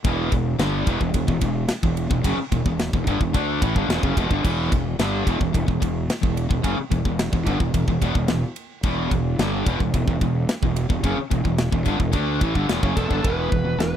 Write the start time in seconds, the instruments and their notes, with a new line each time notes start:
0.04 fingered electric bass E1, distorted electric guitar E2 B2 E3, kick, ride
0.32 fingered electric bass E1, distorted electric guitar E2 B2, kick, ride
0.59 fingered electric bass G1, distorted electric guitar G2 D3 G3, snare, ride
0.86 fingered electric bass E1, distorted electric guitar E2 B2, kick, ride
1.01 fingered electric bass E1, distorted electric guitar E2 B2, kick
1.14 fingered electric bass E1, distorted electric guitar E2 B2, kick, ride
1.27 fingered electric bass E1, distorted electric guitar E2 B2, kick
1.41 fingered electric bass E1, distorted electric guitar E2 B2, kick, ride
1.68 snare, ride
1.83 fingered electric bass E1, distorted electric guitar E2 B2, kick
1.97 ride
2.10 fingered electric bass E1, distorted electric guitar E2 B2, kick
2.23 fingered electric bass F#1, distorted electric guitar F#2 C#3, kick, ride
2.37 muted fingered electric bass stroke, muted distorted electric guitar stroke
2.52 fingered electric bass E1, distorted electric guitar E2 B2, kick, ride
2.66 fingered electric bass E1, distorted electric guitar E2 B2, kick
2.79 snare, ride
2.93 fingered electric bass E1, distorted electric guitar E2 B2, kick
3.07 fingered electric bass G1, distorted electric guitar G2 D3, kick, ride
3.21 fingered electric bass E1, distorted electric guitar E2 B2, kick
3.33 fingered electric bass D2, distorted electric guitar D3 A3 D4, kick, ride
3.62 fingered electric bass A1, distorted electric guitar A2 E3, kick, ride
3.75 fingered electric bass G1, distorted electric guitar G2 D3, kick
3.89 fingered electric bass E1, distorted electric guitar E2 B2, snare, ride
4.02 fingered electric bass F#1, distorted electric guitar F#2 C#3, kick
4.17 fingered electric bass E1, distorted electric guitar E2 B2, kick, ride
4.31 fingered electric bass G1, distorted electric guitar G2 D3, kick
4.44 fingered electric bass E1, distorted electric guitar E2 B2 E3, kick, crash
4.72 fingered electric bass E1, distorted electric guitar E2 B2, kick, ride
4.99 fingered electric bass G1, distorted electric guitar G2 D3 G3, snare, ride
5.26 fingered electric bass E1, distorted electric guitar E2 B2, kick, ride
5.40 fingered electric bass E1, distorted electric guitar E2 B2, kick
5.53 fingered electric bass E1, distorted electric guitar E2 B2, kick, ride
5.66 fingered electric bass E1, distorted electric guitar E2 B2, kick
5.80 fingered electric bass E1, distorted electric guitar E2 B2, kick, ride
6.10 snare, ride
6.22 fingered electric bass E1, distorted electric guitar E2 B2, kick
6.37 ride
6.49 fingered electric bass E1, distorted electric guitar E2 B2, kick
6.63 fingered electric bass F#1, distorted electric guitar F#2 C#3, kick, ride
6.76 muted distorted electric guitar stroke, muted fingered electric bass stroke
6.91 fingered electric bass E1, distorted electric guitar E2 B2, kick, ride
7.05 fingered electric bass E1, distorted electric guitar E2 B2, kick
7.19 snare, ride
7.33 fingered electric bass E1, distorted electric guitar E2 B2, kick
7.46 fingered electric bass G1, distorted electric guitar G2 D3, kick, ride
7.59 fingered electric bass E1, distorted electric guitar E2 B2, kick
7.74 fingered electric bass E1, distorted electric guitar E2 B2, kick, ride
7.88 fingered electric bass E1, distorted electric guitar E2 B2, kick
8.01 fingered electric bass E1, distorted electric guitar E2 B2, kick, ride
8.15 fingered electric bass E1, distorted electric guitar E2 B2, kick
8.28 fingered electric bass E1, distorted electric guitar E2 B2, snare, ride
8.56 ride
8.83 fingered electric bass E1, distorted electric guitar E2 B2 E3, kick, ride
9.11 fingered electric bass E1, distorted electric guitar E2 B2, kick, ride
9.39 fingered electric bass G1, distorted electric guitar G2 D3 G3, snare, ride
9.66 fingered electric bass E1, distorted electric guitar E2 B2, kick, ride
9.80 fingered electric bass E1, distorted electric guitar E2 B2, kick
9.94 fingered electric bass E1, distorted electric guitar E2 B2, kick, ride
10.07 fingered electric bass E1, distorted electric guitar E2 B2, kick
10.21 fingered electric bass E1, distorted electric guitar E2 B2, kick, ride
10.49 snare, ride
10.63 fingered electric bass E1, distorted electric guitar E2 B2, kick
10.76 ride
10.89 fingered electric bass E1, distorted electric guitar E2 B2, kick
11.03 fingered electric bass F#1, distorted electric guitar F#2 C#3, kick, ride
11.17 muted distorted electric guitar stroke, muted fingered electric bass stroke
11.30 fingered electric bass E1, distorted electric guitar E2 B2, kick, ride
11.45 fingered electric bass E1, distorted electric guitar E2 B2, kick
11.58 snare, ride
11.72 fingered electric bass E1, distorted electric guitar E2 B2, kick
11.85 fingered electric bass G1, distorted electric guitar G2 D3, kick, ride
11.99 fingered electric bass E1, distorted electric guitar E2 B2, kick
12.12 fingered electric bass D2, distorted electric guitar D3 A3 D4, kick, ride
12.40 fingered electric bass A1, distorted electric guitar A2 E3, kick, ride
12.53 fingered electric bass G1, distorted electric guitar G2 D3, kick
12.68 fingered electric bass E1, distorted electric guitar E2 B2, snare, ride
12.81 fingered electric bass F#1, distorted electric guitar F#2 C#3, kick
12.95 fingered electric bass E1, distorted electric guitar E2 B2, lead electric guitar A4, kick, ride
13.08 fingered electric bass G1, distorted electric guitar G2 D3, kick
13.22 fingered electric bass E1, distorted electric guitar E2 B2 E3, lead electric guitar B4, kick, ride bell
13.50 fingered electric bass E1, distorted electric guitar E2 B2, kick
13.64 distorted electric guitar E2 B2
13.78 fingered electric bass E1, distorted electric guitar E2 B2, lead electric guitar B4, snare, ride bell